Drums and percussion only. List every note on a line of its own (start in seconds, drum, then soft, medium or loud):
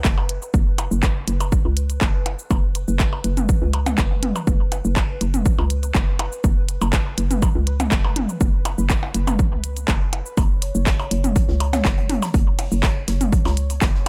0.05 kick loud
0.05 clap medium
0.05 cabasa soft
0.18 percussion blips medium
0.29 closed hi-hat medium
0.42 cabasa soft
0.54 kick loud
0.54 cabasa soft
0.78 closed hi-hat medium
0.78 percussion blips medium
0.78 cabasa soft
0.78 percussion blips medium
0.91 cabasa soft
1.03 kick loud
1.03 clap medium
1.03 cabasa soft
1.28 closed hi-hat medium
1.28 cabasa soft
1.40 closed hi-hat soft
1.40 percussion blips medium
1.40 cabasa soft
1.52 kick loud
1.52 cabasa soft
1.77 closed hi-hat medium
1.77 cabasa soft
1.90 closed hi-hat soft
1.90 cabasa soft
2.01 kick loud
2.01 clap medium
2.01 percussion blips medium
2.01 cabasa soft
2.26 closed hi-hat medium
2.26 percussion blips medium
2.39 cabasa soft
2.51 kick loud
2.51 percussion blips medium
2.51 cabasa soft
2.75 closed hi-hat medium
2.75 cabasa soft
2.88 cabasa soft
3.00 kick loud
3.00 clap medium
3.00 cabasa soft
3.13 percussion blips medium
3.24 closed hi-hat medium
3.24 cabasa soft
3.37 closed hi-hat soft
3.37 mid tom medium
3.37 cabasa soft
3.49 kick loud
3.49 cabasa soft
3.73 closed hi-hat medium
3.73 percussion blips medium
3.86 closed hi-hat soft
3.86 mid tom medium
3.86 cabasa soft
3.86 percussion blips medium
3.98 kick loud
3.98 clap medium
3.98 cabasa soft
4.23 closed hi-hat medium
4.23 mid tom medium
4.36 percussion blips medium
4.36 cabasa soft
4.47 kick loud
4.47 cabasa soft
4.72 closed hi-hat medium
4.72 cabasa soft
4.72 percussion blips soft
4.85 cabasa soft
4.96 kick loud
4.96 clap medium
4.96 percussion blips medium
4.96 cabasa soft
5.21 closed hi-hat medium
5.21 cabasa soft
5.34 closed hi-hat soft
5.34 mid tom medium
5.34 cabasa soft
5.46 kick loud
5.46 cabasa soft
5.59 percussion blips medium
5.70 closed hi-hat medium
5.70 cabasa soft
5.83 closed hi-hat soft
5.83 cabasa soft
5.95 kick loud
5.95 clap medium
5.95 cabasa soft
6.19 closed hi-hat medium
6.19 percussion blips medium
6.32 cabasa soft
6.44 kick loud
6.44 cabasa medium
6.69 closed hi-hat medium
6.69 cabasa soft
6.81 percussion blips medium
6.81 cabasa soft
6.93 kick loud
6.93 clap medium
6.93 cabasa soft
7.18 closed hi-hat medium
7.18 cabasa soft
7.31 closed hi-hat soft
7.31 mid tom medium
7.31 cabasa soft
7.42 kick loud
7.42 percussion blips medium
7.42 cabasa medium
7.67 closed hi-hat medium
7.80 closed hi-hat soft
7.80 mid tom medium
7.80 cabasa soft
7.80 percussion blips medium
7.92 kick loud
7.92 clap medium
7.92 cabasa medium
8.04 percussion blips medium
8.16 closed hi-hat medium
8.16 mid tom medium
8.29 cabasa soft
8.41 kick loud
8.41 cabasa medium
8.65 closed hi-hat medium
8.65 percussion blips medium
8.65 cabasa soft
8.65 percussion blips soft
8.78 cabasa soft
8.90 kick loud
8.90 clap medium
8.90 cabasa medium
9.03 percussion blips medium
9.14 closed hi-hat medium
9.14 cabasa soft
9.27 closed hi-hat soft
9.27 mid tom medium
9.27 percussion blips medium
9.27 cabasa soft
9.27 percussion blips soft
9.39 kick loud
9.39 cabasa medium
9.64 closed hi-hat medium
9.64 cabasa soft
9.77 closed hi-hat soft
9.77 cabasa soft
9.88 kick loud
9.88 clap medium
9.88 percussion blips medium
9.88 cabasa medium
10.13 closed hi-hat medium
10.13 percussion blips medium
10.26 cabasa soft
10.37 kick loud
10.37 closed hi-hat medium
10.37 percussion blips medium
10.37 cabasa medium
10.62 closed hi-hat medium
10.62 cabasa soft
10.75 cabasa soft
10.86 kick loud
10.86 snare loud
10.86 clap medium
10.86 closed hi-hat medium
10.86 cabasa medium
10.99 closed hi-hat soft
10.99 percussion blips medium
11.11 closed hi-hat medium
11.11 cabasa soft
11.24 closed hi-hat soft
11.24 mid tom medium
11.24 cabasa soft
11.36 kick loud
11.36 closed hi-hat medium
11.36 cabasa medium
11.48 snare soft
11.60 closed hi-hat medium
11.60 percussion blips medium
11.73 snare soft
11.73 closed hi-hat soft
11.73 mid tom medium
11.73 cabasa soft
11.73 percussion blips medium
11.84 kick loud
11.84 snare loud
11.84 clap medium
11.84 closed hi-hat medium
11.84 cabasa medium
11.98 closed hi-hat soft
12.10 closed hi-hat medium
12.10 mid tom medium
12.22 snare soft
12.22 percussion blips medium
12.22 cabasa soft
12.34 kick loud
12.34 closed hi-hat medium
12.34 cabasa medium
12.59 closed hi-hat medium
12.59 open hi-hat medium
12.59 cabasa soft
12.59 percussion blips medium
12.72 cabasa soft
12.83 kick loud
12.83 snare loud
12.83 clap medium
12.83 closed hi-hat medium
12.83 percussion blips medium
12.83 cabasa medium
13.08 snare loud
13.08 closed hi-hat medium
13.08 cabasa soft
13.21 closed hi-hat soft
13.21 mid tom medium
13.21 cabasa soft
13.33 kick loud
13.33 closed hi-hat medium
13.33 cabasa medium
13.45 snare medium
13.45 closed hi-hat medium
13.45 percussion blips medium
13.57 closed hi-hat soft
13.57 closed hi-hat medium
13.57 cabasa soft
13.70 closed hi-hat soft
13.70 closed hi-hat medium
13.70 cabasa soft
13.82 kick loud
13.82 snare loud
13.82 clap medium
13.82 closed hi-hat medium
13.82 cabasa medium
13.94 snare soft